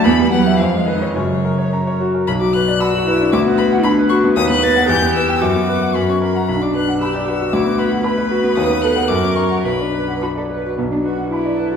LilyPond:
<<
  \new Staff \with { instrumentName = "Violin" } { \time 2/4 \key b \minor \tempo 4 = 113 b''8 fis''8 eis''8 dis''8 | cis''4. r8 | b''16 d'''16 fis'''8 e'''4 | d'''8 b''8 b''8 cis'''8 |
dis'''16 fis'''16 a'''8 g'''8 e'''8 | d'''4 b''16 cis'''16 b''16 ais''16 | b''16 d'''16 fis'''8 e'''4 | d'''8 b''8 b''4 |
dis'''8 fis'''8 d'''8 cis'''8 | b''4 r4 | r4 b'8 a'8 | }
  \new Staff \with { instrumentName = "Grand piano" } { \time 2/4 \key b \minor e,16 g16 b'16 e''16 eis,16 gis16 b'16 cis''16 | fis,16 fis16 ais'16 cis''16 ais''16 cis''16 fis'16 ais'16 | b,,16 fis16 b'16 d''16 b''16 fis'16 b'16 d'16 | d,16 b16 b'16 fis''16 b''16 b'16 fis'16 b16 |
dis,16 b16 b'16 fis''16 e,16 b16 b'16 g''16 | fis,16 b16 b'16 fis''16 fis,16 cis'16 ais'16 fis''16 | b,,16 d'16 b'16 fis''16 b''16 d''16 b'16 fis'16 | d,16 b16 b'16 fis''16 b''16 b'16 fis'16 b16 |
dis,16 b16 a'16 fis''16 fis,16 cis'16 ais'16 fis''16 | b,,16 d'16 b'16 fis''16 b''16 d''16 b'16 fis'16 | b,,16 d'16 b'16 fis''16 b''16 d''16 b'16 fis'16 | }
  \new Staff \with { instrumentName = "Cello" } { \time 2/4 \key b \minor b8 fis8 eis8 dis8 | cis4. r8 | r4 fis'8 e'8 | fis'4 d'4 |
b'4 g'4 | fis'4. r8 | d'4 g'8 fis'8~ | fis'4 b'4~ |
b'4 ais'4 | b'4 fis'16 a'16 b'8 | b16 d'16 fis'8 e'4 | }
>>